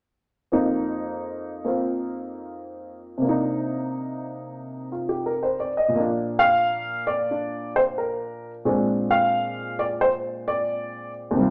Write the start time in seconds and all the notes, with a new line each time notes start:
0.52 F2 F3 A#3 D#4
1.65 A#3 C4 F4
3.18 C3 A#3
3.25 D4 D#4
4.92 F4
5.09 G4
5.26 A#4
5.43 C5
5.60 D5
5.77 D#5
5.88 A#2 F3
5.95 A#3
5.99 D4
6.39 F5
7.07 D5
7.31 D4
7.76 C5
7.98 A#4
8.65 A#2 G#3 C4 D4
9.11 F5
9.79 D5
10.01 C5
10.48 D5
11.31 D#2 C3
11.38 G3 F4